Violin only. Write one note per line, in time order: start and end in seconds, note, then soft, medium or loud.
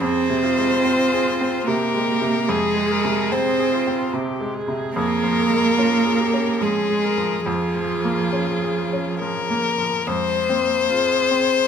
0.00 1.66 C5 medium
1.67 2.51 A#4 medium
2.50 3.33 G#4 medium
3.32 4.13 C5 medium
4.95 6.64 A#4 medium
6.62 7.50 G#4 medium
7.48 9.19 F4 medium
9.20 10.09 A#4 medium
10.07 11.68 C5 medium